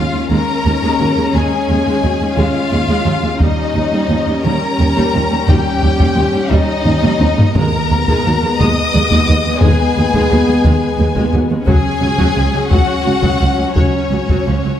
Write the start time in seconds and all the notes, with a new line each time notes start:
Already playing: D#3 G#3 C#4 F4 F5
0.13 D#2 G#3
0.30 D#2 G#3 A#4 A#5
0.65 D#2 G#3
0.82 D#2 G#3
0.99 D#2 F#3
1.17 D#2 G#3
1.33 D#2 G#3 G#4 G#5
1.69 D#2 G#3
1.86 D#2 G#3
2.03 D#2 F#3
2.21 D#2 G#3
2.37 D#2 G#3 F4 F5
2.71 D#2 G#3
2.88 D#2 G#3
3.06 D#2 F#3
3.22 D#2 G#3
3.40 D#2 G3 C#4 D#4 D#5, taiko
3.74 D#2 G3
3.91 D#2 G3
4.10 D#2 F3
4.27 D#2 G3
4.43 D#2 G3 A#4 A#5
4.79 D#2 G3
4.96 D#2 G3, taiko
5.14 D#2 F3
5.31 D#2 G3
5.47 D#2 G3 G4 G5, taiko
5.82 D#2 G3
5.98 D#2 G3, taiko
6.15 D#2 F3
6.32 D#2 G3
6.50 D#2 G3 D#4 D#5, taiko
6.85 D#2 G3
7.03 D#2 G3, taiko mid
7.21 D#2 F3, taiko high
7.38 D#2 G3, taiko low
7.54 D#2 D#3 G#3 B3 A#4 A#5, taiko
7.91 D#2 G#3
8.08 D#2 G#3, taiko
8.25 D#2 F#3
8.43 D#2 G#3
8.58 D#2 G#3 D#5 D#6, taiko
8.94 D#2 G#3
9.11 D#2 G#3, taiko
9.29 D#2 F#3
9.46 D#2 G#3
9.62 D#2 G#3 G#4 G#5, taiko
9.97 D#2 G#3
10.13 D#2 G#3, taiko
10.30 D#2 F#3
10.47 D#2 G#3
10.65 D#2 G#3, taiko
10.99 D#2 G#3
11.15 D#2 G#3, taiko
11.34 D#2 F#3
11.50 D#2 G#3
11.66 C#2 F#3 C#4 G#4 G#5, taiko
12.01 C#2 F#3
12.18 C#2 F#3, taiko
12.36 C#2 F3
12.53 C#2 F#3
12.70 C#2 F#3 F#4 F#5, taiko
13.05 C#2 F#3
13.22 C#2 F#3, taiko
13.40 C#2 F3
13.58 C#2 F#3
13.75 C#2 F#3 C#4 C#5, taiko
14.10 C#2 F#3
14.29 C#2 F#3, taiko
14.46 C#2 F3
14.64 C#2 F#3